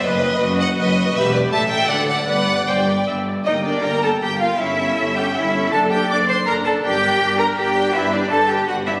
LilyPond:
<<
  \new Staff \with { instrumentName = "Violin section" } { \time 3/4 \key g \major \tempo 4 = 161 b'4. dis''8 b'4 | b'8 b'8 e''8 e''8 d''8 d''8 | d''4 d''4 r4 | \key g \minor ees''8 d''8 bes''8 a''8 g''8 f''8 |
e''4. g''8 e''4 | a''8 g''8 d'''8 c'''8 bes''8 a''8 | g''4. bes''8 g''4 | \key g \major e''8 d''8 a''8 g''8 fis''8 e''8 | }
  \new Staff \with { instrumentName = "Violin section" } { \time 3/4 \key g \major dis''4. fis''8 dis''4 | e''8 d''8 a''8 g''8 fis''8 fis''8 | fis''4 g''4 r4 | \key g \minor g''8 g''8 g''8 g''8 g''8 g''8 |
e''8 e''8 e''8 e''8 e''8 e''8 | d''8 d''8 d''8 d''8 d''8 d''8 | d''8 d''8 d''8 d''8 d''8 d''8 | \key g \major b'8 b'8 b'8 b'8 b'8 b'8 | }
  \new Staff \with { instrumentName = "Viola section" } { \time 3/4 \key g \major b'4 fis'2 | g'4 a'2 | b'4 c''8 b'8 e''8 d''8 | \key g \minor <bes bes'>8 <bes bes'>8 <bes bes'>8 <bes bes'>8 <bes bes'>8 <bes bes'>8 |
<cis' a'>8 <cis' a'>8 <cis' a'>8 <cis' a'>8 <cis' a'>8 <cis' a'>8 | <d' a'>8 <d' a'>8 <d' a'>8 <d' a'>8 <d' a'>8 <d' a'>8 | <d' bes'>8 <d' bes'>8 <d' bes'>8 <d' bes'>8 <d' bes'>8 <d' bes'>8 | \key g \major <d' g'>8 <d' g'>8 <d' g'>8 <d' g'>8 <d' g'>8 <d' g'>8 | }
  \new Staff \with { instrumentName = "Cello section" } { \time 3/4 \key g \major fis,4 fis,4 fis,4 | e,4 a,4 d4 | g,4 g,4 g,4 | \key g \minor ees'8 d'8 bes'8 a'8 g'8 f'8 |
e'4. g'8 e'4 | a'8 g'8 d''8 c''8 bes'8 a'8 | g'4. bes'8 g'4 | \key g \major e'8 d'8 a'8 g'8 fis'8 e'8 | }
  \new Staff \with { instrumentName = "Double bass section" } { \clef bass \time 3/4 \key g \major fis,,4 fis,,4 fis,,4 | e,,4 a,,4 d,4 | g,,4 g,,4 g,,4 | \key g \minor g,,4 g,,4 g,,4 |
g,,4 g,,4 g,,4 | fis,,4 fis,,4 fis,,4 | g,,4 g,,4 g,,4 | \key g \major g,,4 g,,4 g,,4 | }
>>